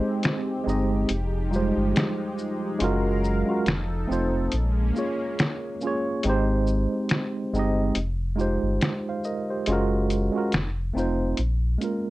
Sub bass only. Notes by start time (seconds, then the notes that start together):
0.67 G1
1.10 F1
1.77 G1
2.81 F#1
3.67 F1
4.10 F1
4.53 A#1
6.25 G#1
7.53 G1
7.96 F1
8.63 G1
9.68 F#1
10.53 F1
10.95 F1
11.39 A#1